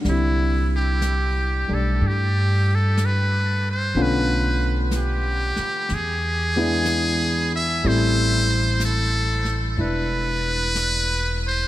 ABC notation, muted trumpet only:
X:1
M:4/4
L:1/8
Q:"Swing" 1/4=62
K:C
V:1 name="Muted trumpet"
E G2 A G A B c | B z G2 ^G3 e | c2 A z B3 c |]